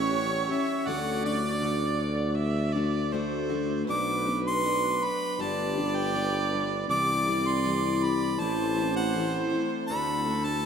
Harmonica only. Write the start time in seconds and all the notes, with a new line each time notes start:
Already playing: C#5
0.51 E5
0.87 F#5
1.25 D5
3.90 D6
4.48 C6
5.04 B5
5.42 A5
5.96 G5
6.91 D6
7.48 C6
8.03 B5
8.40 A5
8.96 F#5
9.87 B5
10.44 A5